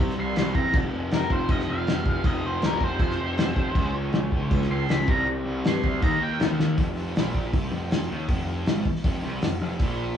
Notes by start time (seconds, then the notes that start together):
Already playing: C3 G3 C4
0.00 C3
0.09 snare
0.18 C2 C6
0.36 C2 C6, snare, crash
0.55 E2 A#5, kick
0.72 F1 F2 C3, kick, crash
0.78 F3
0.94 F1
1.11 F1 A#4, snare, crash
1.30 F1 C5, kick
1.49 F1 D#5, kick, crash
1.60 snare
1.69 F1 F5
1.87 F1, snare, crash
2.05 F1, kick
2.23 F1 F2 C3 D#5, kick, crash
2.28 F3
2.43 F1 C5
2.62 C2 A#4, snare, crash
2.81 F1 C5, kick
2.99 F2, kick, crash
3.11 snare
3.19 F1
3.37 F1, snare, crash
3.56 F1, kick
3.73 C#2 C#3 G#3, kick, crash
3.79 C#4
3.93 C#2
4.13 C#2, snare, crash
4.32 C#2, kick
4.51 C#2, kick, crash
4.62 snare
4.70 C#2 C6
4.89 C#2 B5, snare, crash
5.06 C2 C3 G3, kick
5.10 C4 A#5
5.26 C2, crash
5.45 C2
5.64 G2 C6, snare, crash
5.83 D2, kick
6.01 D#2 D#3 A#3 A#5, kick, crash
6.06 D#4
6.21 D#2 G5
6.40 D#2, snare, crash
6.59 D#2, snare
6.78 F1 F2, kick, open hi-hat
7.16 A#1 A#2, snare, open hi-hat
7.34 kick
7.53 C2 C3, kick, open hi-hat
7.71 F1 F2
7.91 snare, open hi-hat
8.10 D#2 D#3
8.28 F1 F2, kick, open hi-hat
8.66 G#1 G#2, snare, open hi-hat
8.86 muted picked electric bass stroke, muted distorted electric guitar stroke, kick
8.96 snare
9.04 F1 F2, kick, open hi-hat
9.23 C2 C3
9.41 F1 F2, snare, open hi-hat
9.59 F1 F2
9.79 A#1 A#2, kick, open hi-hat